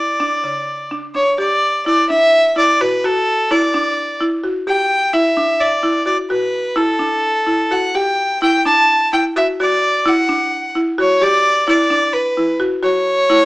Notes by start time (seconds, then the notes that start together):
Already playing: D5
0.20 D4
0.44 C#3
0.91 D4
1.15 D4 C#5
1.38 G4 D5
1.86 E4 D5
2.09 D4 E5
2.56 E4 D5
2.81 F#4 B4
3.04 F#4 A4
3.51 E4 D5
3.74 D4
4.21 E4
4.44 F#4
4.67 G4 G5
5.13 E4 E5
5.37 D4
5.60 D5
5.83 E4
6.06 F#4 D5
6.30 F#4 B4
6.76 E4 A4
6.99 D4
7.47 E4
7.71 F#4 F#5
7.95 G4 G5
8.42 E4 G5
8.65 D4 A5
9.13 E4 G5
9.36 F#4 E5
9.60 F#4 D5
10.06 E4 F#5
10.29 D4
10.75 E4
10.98 F#4 C#5
11.22 G4 D5
11.68 E4 D5
11.90 D4
12.13 B4
12.37 E4
12.60 F#4
12.82 F#4 C#5
13.30 E4